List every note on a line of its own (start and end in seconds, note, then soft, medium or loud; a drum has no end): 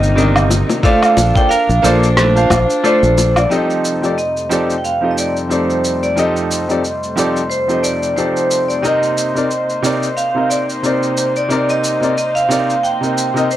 0.00 0.62 G1 medium
0.00 0.13 C3 medium
0.00 0.81 C3 medium
0.00 0.81 A#3 medium
0.00 0.13 C4 medium
0.00 0.13 D#4 medium
0.00 0.81 D#4 medium
0.00 0.14 A#4 medium
0.00 0.14 D#5 medium
0.00 0.46 D#5 medium
0.00 shaker soft
0.15 0.79 C3 medium
0.15 0.80 D#3 medium
0.15 0.80 C4 medium
0.15 0.37 D4 medium
0.15 0.81 A#4 medium
0.15 0.81 D#5 medium
0.15 shaker soft
0.36 low woodblock medium
0.36 shaker soft
0.50 high bongo medium
0.50 shaker medium
0.69 high bongo medium
0.69 shaker soft
0.83 1.14 A3 medium
0.83 3.48 D4 medium
0.83 1.31 F4 medium
0.83 1.31 A4 loud
0.83 1.32 C5 medium
0.83 1.32 D5 loud
0.83 1.32 F5 loud
0.83 kick loud
0.83 shaker soft
1.03 low woodblock medium
1.03 shaker soft
1.17 1.31 A#1 medium
1.17 high bongo medium
1.17 shaker medium
1.34 1.46 A#3 medium
1.34 1.47 F4 medium
1.34 1.47 A4 medium
1.34 1.48 C5 medium
1.34 1.48 D5 medium
1.34 1.51 G5 loud
1.34 kick loud
1.34 shaker soft
1.49 1.70 A#4 medium
1.49 1.84 F5 loud
1.49 shaker soft
1.69 1.80 A#1 loud
1.69 shaker soft
1.82 2.45 A#1 loud
1.82 2.05 A#3 loud
1.82 2.06 F4 loud
1.82 2.06 A4 medium
1.82 2.84 C5 medium
1.82 2.06 C5 medium
1.82 2.07 D5 loud
1.82 shaker medium
2.03 shaker soft
2.17 2.37 A3 medium
2.17 cross-stick medium
2.17 shaker soft
2.35 2.80 F4 medium
2.35 2.81 C5 medium
2.35 2.81 F5 medium
2.35 2.80 A5 medium
2.35 shaker soft
2.50 2.65 A#1 loud
2.50 kick medium
2.50 high bongo medium
2.50 low woodblock medium
2.50 shaker medium
2.70 shaker soft
2.83 3.04 A3 medium
2.83 3.47 F4 medium
2.83 3.47 A4 medium
2.83 3.33 C5 medium
2.83 3.47 C5 medium
2.83 3.48 D5 medium
2.83 shaker soft
3.03 3.45 A#1 medium
3.03 shaker soft
3.18 high bongo medium
3.18 shaker medium
3.36 3.43 D5 medium
3.36 high bongo medium
3.36 low woodblock medium
3.36 shaker soft
3.49 8.80 F2 medium
3.49 13.57 C3 medium
3.49 3.97 F3 medium
3.49 8.80 G3 medium
3.49 8.80 A3 medium
3.49 3.98 C4 medium
3.49 6.15 D#4 medium
3.49 3.98 D#4 medium
3.49 3.98 G4 medium
3.49 3.99 A4 medium
3.49 13.57 C5 medium
3.49 4.17 D#5 medium
3.49 3.99 D#5 medium
3.49 shaker soft
3.70 shaker soft
3.85 shaker medium
4.01 4.13 F3 medium
4.01 4.14 C4 medium
4.01 4.14 D#4 medium
4.01 4.14 G4 medium
4.01 4.15 A4 medium
4.01 4.15 D5 medium
4.01 shaker soft
4.18 4.80 D#5 medium
4.18 shaker soft
4.37 shaker soft
4.49 4.72 F3 medium
4.49 4.72 C4 medium
4.49 4.73 D#4 medium
4.49 4.73 G4 medium
4.49 4.73 A4 medium
4.49 4.74 D5 medium
4.49 shaker medium
4.70 shaker soft
4.78 4.84 G5 medium
4.84 5.09 F5 medium
4.84 shaker soft
5.01 5.46 F3 medium
5.01 5.46 C4 medium
5.01 5.47 D#4 medium
5.01 5.47 G4 soft
5.01 5.48 A4 medium
5.01 5.48 D#5 medium
5.11 5.17 D#5 medium
5.18 5.33 D5 medium
5.18 shaker medium
5.37 shaker soft
5.49 6.13 F3 medium
5.49 6.13 C4 medium
5.49 6.14 D#4 medium
5.49 6.14 G4 medium
5.49 6.14 A4 medium
5.49 6.04 C5 medium
5.49 6.14 D5 medium
5.49 shaker soft
5.70 shaker soft
5.84 shaker medium
6.03 6.18 D5 medium
6.03 shaker soft
6.16 6.64 F3 medium
6.16 6.64 C4 medium
6.16 6.65 D#4 medium
6.16 6.65 G4 medium
6.16 6.65 A4 medium
6.16 7.55 D#5 medium
6.16 6.66 D#5 medium
6.16 shaker soft
6.36 shaker soft
6.51 shaker medium
6.68 6.80 F3 medium
6.68 6.80 C4 medium
6.68 6.80 D#4 medium
6.68 6.81 G4 medium
6.68 6.81 A4 medium
6.68 6.82 D5 medium
6.68 shaker soft
6.84 shaker soft
7.03 shaker soft
7.16 7.39 F3 medium
7.16 7.39 C4 medium
7.16 7.39 D#4 medium
7.16 7.39 G4 medium
7.16 7.40 A4 medium
7.16 7.40 D5 loud
7.16 shaker medium
7.36 shaker soft
7.50 7.84 C5 medium
7.50 shaker soft
7.68 8.13 F3 medium
7.68 8.13 C4 medium
7.68 8.13 D#4 medium
7.68 8.14 G4 medium
7.68 8.14 A4 soft
7.68 8.14 D#5 medium
7.68 shaker soft
7.83 8.18 D5 medium
7.83 shaker medium
8.03 shaker soft
8.16 8.80 F3 medium
8.16 8.80 C4 medium
8.16 8.80 D#4 medium
8.16 8.81 G4 medium
8.16 8.81 A4 medium
8.16 8.65 C5 medium
8.16 8.81 D5 medium
8.16 shaker soft
8.37 shaker soft
8.51 shaker medium
8.69 8.75 D5 medium
8.69 shaker soft
8.82 9.31 C3 medium
8.82 13.57 A#3 medium
8.82 9.31 C4 medium
8.82 13.57 D#4 medium
8.82 9.31 D#4 medium
8.82 9.32 A#4 medium
8.82 10.21 D#5 medium
8.82 9.32 D#5 medium
8.82 shaker soft
9.03 shaker soft
9.18 shaker medium
9.34 9.46 C3 medium
9.34 9.47 C4 medium
9.34 9.47 D#4 medium
9.34 9.48 A#4 medium
9.34 9.48 D5 medium
9.34 shaker soft
9.51 shaker soft
9.70 shaker soft
9.82 10.05 C3 medium
9.82 10.06 C4 medium
9.82 10.06 D#4 medium
9.82 10.06 A#4 medium
9.82 10.07 D5 loud
9.82 shaker medium
10.03 shaker soft
10.17 10.48 F5 medium
10.17 shaker soft
10.34 10.79 C3 medium
10.34 10.80 C4 medium
10.34 10.80 D#4 medium
10.34 10.81 A#4 medium
10.34 10.81 D#5 medium
10.50 10.65 D5 medium
10.50 shaker medium
10.69 shaker soft
10.82 11.46 C3 medium
10.82 11.47 C4 medium
10.82 11.47 D#4 medium
10.82 11.48 A#4 medium
10.82 11.32 C5 medium
10.82 11.48 D5 medium
10.82 shaker soft
11.03 shaker soft
11.17 shaker medium
11.36 11.71 D5 medium
11.36 shaker soft
11.48 11.97 C3 medium
11.48 11.97 C4 medium
11.48 11.98 D#4 medium
11.48 11.98 A#4 medium
11.48 11.99 D5 medium
11.48 shaker soft
11.69 12.17 D#5 loud
11.69 shaker soft
11.84 shaker medium
12.00 12.13 C3 medium
12.00 12.13 C4 medium
12.00 12.14 D#4 medium
12.00 12.14 A#4 medium
12.00 12.14 D5 medium
12.00 shaker soft
12.17 12.37 D#5 medium
12.17 shaker soft
12.35 12.85 F5 loud
12.35 shaker soft
12.48 12.72 C3 medium
12.48 12.72 C4 medium
12.48 12.72 D#4 medium
12.48 12.73 A#4 medium
12.48 12.73 D5 medium
12.48 shaker medium
12.70 shaker soft
12.83 13.46 G5 medium
12.83 shaker soft
13.01 13.31 C3 medium
13.01 13.32 C4 medium
13.01 13.32 D#4 medium
13.01 13.32 A#4 medium
13.01 13.33 D#5 medium
13.01 shaker soft
13.18 shaker medium
13.34 13.46 C3 medium
13.34 13.47 C4 medium
13.34 13.47 D#4 medium
13.34 13.47 A#4 medium
13.34 13.48 D#5 medium
13.34 shaker soft
13.51 13.57 C5 medium
13.51 shaker soft